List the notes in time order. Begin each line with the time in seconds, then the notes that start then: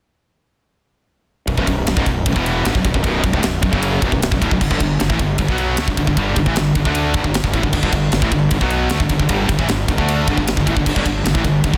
1.48 B0 B1 F#2, kick, ride
1.57 B0 B1 F#2, kick
1.67 B0 B1 F#2, kick, ride
1.87 B0 B1 F#2, snare, ride
1.97 C#1 C#2 G#2, kick
2.06 B0 B1 F#2, kick, ride
2.26 B0 B1 F#2, kick, ride
2.36 E1 E2 B2 E3, kick
2.46 ride
2.65 G1 G2 D3, snare, ride
2.75 B0 B1 F#2, kick
2.84 B0 B1 F#2, kick, ride
2.94 B0 B1 F#2, kick
3.02 B0 B1 F#2 B2, kick, ride
3.23 B0 B1 F#2, kick, ride
3.33 D1 D2 A2, kick
3.42 B0 B1 F#2, snare, ride
3.62 B0 B1 F#2, kick, ride
3.71 F#1 F#2 C#3 F#3, kick
3.82 ride
4.01 B0 B1 F#2, kick, ride
4.12 B0 B1 F#2, kick
4.22 snare, ride
4.31 B0 B1 F#2, kick
4.41 D1 D2 A2, kick, ride
4.51 B0 B1 F#2, kick
4.61 G1 G2 D3, kick, crash
4.71 G1 G2 D3, kick
4.80 G1 G2 D3, kick, ride
4.99 G1 G2 D3, snare, ride
5.09 A1 A2 E3, kick
5.19 G1 G2 D3, kick, ride
5.38 G1 G2 D3, kick, ride
5.48 B1 B2 F#3 B3, kick
5.58 ride
5.77 D2 D3 A3, snare, ride
5.87 G1 G2 D3, kick
5.97 G1 G2 D3, kick, ride
6.07 G1 G2 D3, kick
6.17 G1 G2 D3 G3, kick, ride
6.36 G1 G2 D3, kick, ride
6.46 A1 A2 E3, kick
6.55 G1 G2 D3, snare, ride
6.75 G1 G2 D3, kick, ride
6.85 D2 D3 A3 D4, kick
6.95 ride
7.14 G1 G2 D3, kick, ride
7.24 G1 G2 D3, kick
7.34 snare, ride
7.44 G1 G2 D3, kick
7.53 A1 A2 E3, kick, ride
7.63 G1 G2 D3, kick
7.73 G1 G2 D3, kick, crash
7.83 G1 G2 D3, kick
7.92 G1 G2 D3, kick, ride
8.12 G1 G2 D3, snare, ride
8.22 A1 A2 E3, kick
8.32 G1 G2 D3, kick, ride
8.51 G1 G2 D3, kick, ride
8.61 B1 B2 F#3 B3, kick
8.70 ride
8.90 D2 D3 A3, snare, ride
9.00 G1 G2 D3, kick
9.09 G1 G2 D3, kick, ride
9.20 G1 G2 D3, kick
9.29 G1 G2 D3 G3, kick, ride
9.49 G1 G2 D3, kick, ride
9.59 A1 A2 E3, kick
9.69 G1 G2 D3, snare, ride
9.88 G1 G2 D3, kick, ride
9.97 D2 D3 A3 D4, kick
10.08 ride
10.28 G1 G2 D3, kick, ride
10.37 G1 G2 D3, kick
10.47 snare, ride
10.57 G1 G2 D3, kick
10.66 A1 A2 E3, kick, ride
10.76 G1 G2 D3, kick
10.86 G1 G2 D3, kick, crash
10.96 G1 G2 D3, kick
11.05 G1 G2 D3, kick, ride
11.24 G1 G2 D3, snare, ride
11.34 A1 A2 E3, kick
11.44 G1 G2 D3, kick, ride
11.64 G1 G2 D3, kick, ride
11.73 B1 B2, kick